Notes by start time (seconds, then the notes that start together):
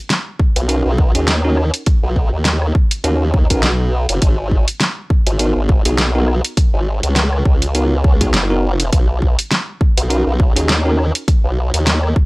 0.10 snare, closed hi-hat
0.39 kick
0.56 B1, closed hi-hat
0.69 C#4 D#4 F#4 A#4, closed hi-hat
0.85 B1
0.98 kick
1.15 D#2 C#4 D#4 F#4 G#4, closed hi-hat
1.28 snare, closed hi-hat
1.44 C#4 D#4 F#4 A#4
1.57 cross-stick
1.74 closed hi-hat
1.86 kick, closed hi-hat
2.03 B1
2.16 kick
2.33 D#2
2.45 snare, closed hi-hat
2.62 cross-stick
2.75 kick
2.91 closed hi-hat
3.04 D#2 C#4 D#4 F#4 A#4, closed hi-hat
3.34 kick
3.50 B1 C#4 D#4 F#4 A#4, kick, closed hi-hat
3.63 snare, closed hi-hat
4.09 F#1, closed hi-hat
4.22 G#1, kick, closed hi-hat
4.51 kick
4.68 closed hi-hat
4.80 snare, closed hi-hat
5.10 kick
5.27 G#1, closed hi-hat
5.39 B3 D#4 F#4 A#4, closed hi-hat
5.56 G#1
5.69 kick
5.85 B1 B3 D#4 F#4 G#4, closed hi-hat
5.98 snare, closed hi-hat
6.15 B3 D#4 F#4 A#4
6.28 cross-stick
6.45 closed hi-hat
6.57 kick, closed hi-hat
6.74 G#1
7.03 C#2, closed hi-hat
7.16 snare, closed hi-hat
7.33 cross-stick
7.45 C#2, kick
7.62 closed hi-hat
7.75 B3 D#4 F#4 A#4, closed hi-hat
8.04 kick
8.21 B3 D#4 F#4 G#4, kick, closed hi-hat
8.34 F#1, snare, closed hi-hat
8.50 B3 D#4 F#4 A#4
8.74 F1
8.80 closed hi-hat
8.93 B1, kick, closed hi-hat
9.22 kick
9.39 closed hi-hat
9.51 snare, closed hi-hat
9.81 kick
9.97 B1, closed hi-hat
10.10 C#4 D#4 F#4 A#4, closed hi-hat
10.27 B1
10.40 kick
10.56 D#2 C#4 D#4 F#4 G#4, closed hi-hat
10.69 snare, closed hi-hat
10.85 C#4 D#4 F#4 A#4
10.99 cross-stick
11.15 closed hi-hat
11.28 kick, closed hi-hat
11.44 B1
11.74 D#2, closed hi-hat
11.87 snare, closed hi-hat
12.03 cross-stick
12.16 kick